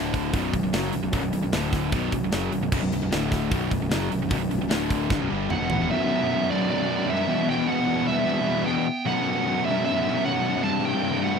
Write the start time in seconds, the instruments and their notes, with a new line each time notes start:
Already playing: picked electric bass D1, distorted electric guitar D2 A2 D3
0.14 kick, open hi-hat
0.33 picked electric bass B0, distorted electric guitar B1 F#2 B2, kick, open hi-hat
0.53 picked electric bass B0, distorted electric guitar B1 F#2, kick, open hi-hat
0.64 picked electric bass B0, distorted electric guitar B1 F#2
0.73 picked electric bass F#1, distorted electric guitar F#2 C#3 F#3, snare, open hi-hat
0.93 picked electric bass B0, distorted electric guitar B1 F#2, open hi-hat
1.03 picked electric bass B0, distorted electric guitar B1 F#2
1.13 picked electric bass B0, distorted electric guitar B1 F#2, kick, open hi-hat
1.23 picked electric bass B0, distorted electric guitar B1 F#2
1.33 picked electric bass B0, distorted electric guitar B1 F#2, open hi-hat
1.43 picked electric bass B0, distorted electric guitar B1 F#2
1.53 picked electric bass D1, distorted electric guitar D2 A2 D3, snare, open hi-hat
1.73 kick, snare, open hi-hat
1.92 picked electric bass B0, distorted electric guitar B1 F#2 B2, kick, open hi-hat
2.12 picked electric bass B0, distorted electric guitar B1 F#2, kick, open hi-hat
2.23 picked electric bass B0, distorted electric guitar B1 F#2
2.32 picked electric bass F#1, distorted electric guitar F#2 C#3 F#3, snare, open hi-hat
2.52 picked electric bass B0, distorted electric guitar B1 F#2, open hi-hat
2.62 picked electric bass B0, distorted electric guitar B1 F#2
2.72 picked electric bass B0, distorted electric guitar B1 F#2, kick, crash
2.82 picked electric bass B0, distorted electric guitar B1 F#2
2.92 picked electric bass B0, distorted electric guitar B1 F#2, open hi-hat
3.02 picked electric bass B0, distorted electric guitar B1 F#2
3.11 picked electric bass D1, distorted electric guitar D2 A2 D3, snare, open hi-hat
3.32 kick, snare, open hi-hat
3.50 picked electric bass B0, distorted electric guitar B1 F#2 B2, kick, open hi-hat
3.70 picked electric bass B0, distorted electric guitar B1 F#2, kick, open hi-hat
3.80 picked electric bass B0, distorted electric guitar B1 F#2
3.90 picked electric bass F#1, distorted electric guitar F#2 C#3 F#3, snare, open hi-hat
4.09 picked electric bass B0, distorted electric guitar B1 F#2, open hi-hat
4.19 distorted electric guitar B1 F#2
4.23 picked electric bass B0
4.29 picked electric bass B0, distorted electric guitar B1 F#2, kick, open hi-hat
4.38 distorted electric guitar B1 F#2
4.42 picked electric bass B0, distorted electric guitar F#2
4.49 picked electric bass B0, distorted electric guitar B1 F#2, open hi-hat
4.58 picked electric bass B0, distorted electric guitar B1 F#2
4.68 picked electric bass D1, distorted electric guitar D2 A2 D3, snare, open hi-hat
4.90 kick, open hi-hat
5.09 picked electric bass G1, distorted electric guitar G2 D3, kick, snare
5.19 picked electric bass B0, distorted electric guitar B1 F#2
5.29 picked electric bass G1, distorted electric guitar G2 D3 G3
5.49 picked electric bass B0, distorted electric guitar B1 F#2, lead electric guitar B3 F#5, mid tom
5.59 picked electric bass E1, distorted electric guitar E2 B2
5.69 picked electric bass A1, distorted electric guitar A2 E3, floor tom
5.79 picked electric bass E1, distorted electric guitar E2 B2
5.90 distorted electric guitar B1 F#2, overdriven electric guitar B2, lead electric guitar B3 E5
5.97 distorted electric guitar B1 F#2
6.05 distorted electric guitar B1 F#2
6.13 distorted electric guitar B1 F#2
6.20 distorted electric guitar B1 F#2
6.28 distorted electric guitar B1 F#2
6.36 distorted electric guitar B1 F#2
6.43 distorted electric guitar B1 F#2
6.48 distorted electric guitar B1 F#2, overdriven electric guitar B2, lead electric guitar D5
6.52 lead electric guitar F#3
6.58 distorted electric guitar B1 F#2
6.67 distorted electric guitar B1 F#2, lead electric guitar D5
6.72 distorted electric guitar B1 F#2, lead electric guitar F#3
6.82 distorted electric guitar B1 F#2
6.88 distorted electric guitar B1 F#2
6.98 distorted electric guitar B1 F#2
7.05 distorted electric guitar B1 F#2
7.10 distorted electric guitar B1 F#2, overdriven electric guitar B2, lead electric guitar G3 E5
7.19 distorted electric guitar B1 F#2
7.28 distorted electric guitar E2 B2, overdriven electric guitar E3
7.36 distorted electric guitar E2 B2
7.43 distorted electric guitar E2 B2
7.48 distorted electric guitar E2 B2, lead electric guitar B3 G5
7.58 distorted electric guitar E2 B2
7.64 distorted electric guitar E2 B2, lead electric guitar F#5
7.69 distorted electric guitar E2, lead electric guitar B3
7.73 distorted electric guitar B2
7.80 distorted electric guitar E2 B2
7.87 distorted electric guitar E2 B2, overdriven electric guitar E3
7.96 distorted electric guitar E2 B2
8.03 distorted electric guitar E2 B2
8.07 distorted electric guitar E2, lead electric guitar G3 E5
8.12 distorted electric guitar B2
8.18 distorted electric guitar E2 B2
8.26 distorted electric guitar E2 B2
8.33 distorted electric guitar E2 B2
8.40 distorted electric guitar E2 B2
8.46 distorted electric guitar E2 B2, overdriven electric guitar E3
8.56 distorted electric guitar E2 B2
8.63 distorted electric guitar E2 B2, lead electric guitar G5
8.68 distorted electric guitar E2 B2, lead electric guitar B3
8.78 distorted electric guitar E2 B2
9.06 distorted electric guitar B1 F#2, overdriven electric guitar B2, lead electric guitar B3 F#5
9.13 distorted electric guitar B1 F#2
9.20 distorted electric guitar B1 F#2
9.29 distorted electric guitar B1 F#2
9.36 distorted electric guitar B1 F#2
9.43 distorted electric guitar B1 F#2
9.50 distorted electric guitar B1 F#2
9.57 distorted electric guitar B1
9.62 distorted electric guitar B1 F#2, overdriven electric guitar B2, lead electric guitar E5
9.68 distorted electric guitar F#2, lead electric guitar G3
9.73 distorted electric guitar B1 F#2
9.80 distorted electric guitar B1
9.85 distorted electric guitar F#2, lead electric guitar B3 E5
9.89 distorted electric guitar B1
9.94 distorted electric guitar B1 F#2
10.02 distorted electric guitar B1 F#2
10.08 distorted electric guitar B1 F#2
10.18 distorted electric guitar B1 F#2
10.25 distorted electric guitar B1 F#2, overdriven electric guitar B2, lead electric guitar B3 F#5
10.33 distorted electric guitar B1 F#2
10.40 distorted electric guitar B1 F#2
10.49 distorted electric guitar B1 F#2
10.56 distorted electric guitar B1 F#2
10.63 distorted electric guitar C2 G2, overdriven electric guitar C3, lead electric guitar C4 A5
10.71 distorted electric guitar C2 G2
10.79 distorted electric guitar C2 G2
10.84 distorted electric guitar C2 G2, lead electric guitar C4 G5
10.94 distorted electric guitar C2 G2
11.02 distorted electric guitar C2 G2
11.11 distorted electric guitar C2 G2
11.18 distorted electric guitar C2 G2
11.23 distorted electric guitar C2 G2, overdriven electric guitar C3, lead electric guitar A3 F#5
11.35 distorted electric guitar C2 G2